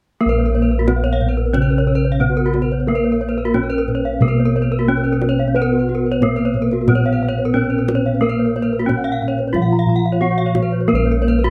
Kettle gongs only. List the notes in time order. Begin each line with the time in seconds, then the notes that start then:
0.21 A#4
0.26 A#1
0.88 B3
2.21 B3
2.87 A#4
3.54 B3
4.20 B2
4.88 B3
5.55 B4
6.21 B3
6.88 A#2
7.55 B3
8.22 A#4
8.88 B3
9.54 A#2
10.21 B3
10.88 A#4
10.93 A#1